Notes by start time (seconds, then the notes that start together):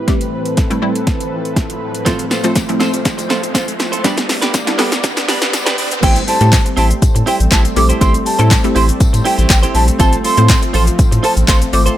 Already playing: A2 E3 C4 B4, riser
0.08 G3 A3 C4 G4 A4, kick, snare, closed hi-hat
0.21 closed hi-hat
0.45 closed hi-hat
0.57 kick, snare, closed hi-hat
0.70 G3 A3 C4 E4, closed hi-hat
0.82 G3 A3 C4 E4
0.95 closed hi-hat
1.07 kick, snare, closed hi-hat
1.20 closed hi-hat
1.45 closed hi-hat
1.56 kick, snare, closed hi-hat
1.70 closed hi-hat
1.95 closed hi-hat
2.05 A2 F3 A3 C4 F4 A4 C5, kick, snare, closed hi-hat, tambourine, shaker
2.19 closed hi-hat, shaker
2.30 C4 F4 A4 C5, snare, tambourine, shaker
2.43 A2 F3 A3 C4 F4 A4 C5, closed hi-hat, tambourine, shaker
2.55 kick, snare, closed hi-hat, tambourine, shaker
2.68 A2 F3 A3 C4 E4, muted clean electric guitar stroke, closed hi-hat, shaker
2.80 C4 F4 A4 C5, snare, tambourine, shaker
2.93 muted clean electric guitar stroke, closed hi-hat, tambourine, shaker
3.05 muted clean electric guitar stroke, kick, snare, closed hi-hat, tambourine, shaker
3.18 muted clean electric guitar stroke, closed hi-hat, tambourine, shaker
3.29 C4 F4 A4 C5, snare, tambourine, shaker
3.43 muted clean electric guitar stroke, closed hi-hat, shaker
3.54 C4 F4 A4 C5, kick, snare, closed hi-hat, tambourine, shaker
3.68 muted clean electric guitar stroke, closed hi-hat, shaker
3.79 muted clean electric guitar stroke, snare, tambourine, shaker
3.92 C4 F4 A4 C5, closed hi-hat, shaker
4.04 G2 G3 B3 D4 G4 B4 D5, kick, snare, closed hi-hat, tambourine, shaker
4.17 muted clean electric guitar stroke, snare, closed hi-hat, shaker
4.29 muted clean electric guitar stroke, snare, open hi-hat, tambourine, shaker
4.42 B3 D4 G4 B4, snare, closed hi-hat, tambourine, shaker
4.54 kick, snare, closed hi-hat, tambourine, shaker
4.67 G3 B3 D4 E4, muted clean electric guitar stroke, snare, closed hi-hat, shaker
4.78 G3 B3 D4 G4 A4 B4, snare, open hi-hat, tambourine, shaker
4.91 muted clean electric guitar stroke, snare, closed hi-hat, tambourine, shaker
5.03 muted clean electric guitar stroke, kick, snare, closed hi-hat, tambourine, shaker
5.16 muted clean electric guitar stroke, snare, closed hi-hat, tambourine, shaker
5.28 B3 D4 G4 B4, snare, open hi-hat, tambourine, shaker
5.41 B3 D4 G4 B4, snare, closed hi-hat, shaker
5.53 muted clean electric guitar stroke, snare, closed hi-hat, tambourine, shaker
5.66 B3 D4 G4 B4, snare, closed hi-hat, shaker
5.77 B3 D4 G4 B4, open hi-hat, tambourine, shaker
5.91 muted clean electric guitar stroke, closed hi-hat, shaker
6.02 A1 G3 A3 C4 E4 G4 A4 C5 G5, kick, closed hi-hat, crash, tambourine, shaker
6.16 closed hi-hat, shaker
6.27 C4 E4 G4 C5 A5, open hi-hat, tambourine, shaker
6.40 A2 A3 C4 E4 G4 A4 C5, closed hi-hat, tambourine, shaker
6.52 kick, snare, clap, closed hi-hat, tambourine, shaker
6.65 muted clean electric guitar stroke, closed hi-hat, shaker
6.77 A1 C4 E4 G4 C5 A5, open hi-hat, tambourine, shaker
6.90 muted clean electric guitar stroke, closed hi-hat, shaker
7.02 A2, muted clean electric guitar stroke, kick, closed hi-hat, tambourine, shaker
7.15 A2, muted clean electric guitar stroke, closed hi-hat, shaker
7.26 C4 E4 G4 C5 G5, open hi-hat, tambourine, shaker
7.40 A1, muted clean electric guitar stroke, closed hi-hat, shaker
7.51 A1 C4 E4 G4 C5 A5, kick, snare, clap, closed hi-hat, tambourine, shaker
7.64 muted clean electric guitar stroke, closed hi-hat, shaker
7.76 A#1 A3 C4 E4 G4 A4 D6, muted clean electric guitar stroke, open hi-hat, tambourine, shaker
7.89 C4 E4 G4 C5, closed hi-hat, shaker
8.01 A1 A3 C4 E4 G4 A4 C5 C6, kick, closed hi-hat, tambourine, shaker
8.14 muted clean electric guitar stroke, closed hi-hat, shaker
8.26 A5, muted clean electric guitar stroke, open hi-hat, tambourine, shaker
8.39 A2 A3 C4 E4 G4 A4 C5, closed hi-hat, tambourine, shaker
8.50 muted clean electric guitar stroke, kick, snare, clap, closed hi-hat, tambourine, shaker
8.64 A3 C4 E4 G4 A4, muted clean electric guitar stroke, closed hi-hat, shaker
8.75 A1 C4 E4 G4 C5 C6, open hi-hat, tambourine, shaker
8.88 muted clean electric guitar stroke, closed hi-hat, shaker
9.00 A2, muted clean electric guitar stroke, kick, closed hi-hat, tambourine, shaker
9.13 A2, muted clean electric guitar stroke, closed hi-hat, tambourine, shaker
9.25 C4 E4 G4 C5 G5, open hi-hat, tambourine, shaker
9.38 A1 C4 E4 G4 C5, closed hi-hat, tambourine, shaker
9.49 A1 G5, muted clean electric guitar stroke, kick, snare, clap, closed hi-hat, tambourine, shaker
9.63 C4 E4 G4 C5, closed hi-hat, shaker
9.74 A#1 C4 E4 G4 C5 A5, open hi-hat, tambourine, shaker
9.87 muted clean electric guitar stroke, closed hi-hat, shaker
9.99 A1 F3 A3 C4 F4 A4 C5 A5, kick, closed hi-hat, tambourine, shaker
10.13 closed hi-hat, shaker
10.24 C4 F4 A4 C5 C6, open hi-hat, tambourine, shaker
10.37 A2 A3 C4 F4 A4 C5, closed hi-hat, tambourine, shaker
10.49 kick, snare, clap, closed hi-hat, tambourine, shaker
10.62 muted clean electric guitar stroke, closed hi-hat, shaker
10.73 A1 C4 F4 A4 C5 C6, open hi-hat, tambourine, shaker
10.87 muted clean electric guitar stroke, closed hi-hat, shaker
10.98 A2, muted clean electric guitar stroke, kick, closed hi-hat, tambourine, shaker
11.12 A2, muted clean electric guitar stroke, closed hi-hat, shaker
11.23 C4 F4 A4 C5 A5, open hi-hat, tambourine, shaker
11.36 A1, muted clean electric guitar stroke, closed hi-hat, tambourine, shaker
11.48 A1 C4 F4 A4 C5 C6, kick, snare, clap, closed hi-hat, tambourine, shaker
11.61 muted clean electric guitar stroke, closed hi-hat, shaker
11.73 G#1 A3 C4 F4 A4 C5 D6, muted clean electric guitar stroke, open hi-hat, tambourine, shaker
11.86 C4 F4 A4 C5, closed hi-hat, shaker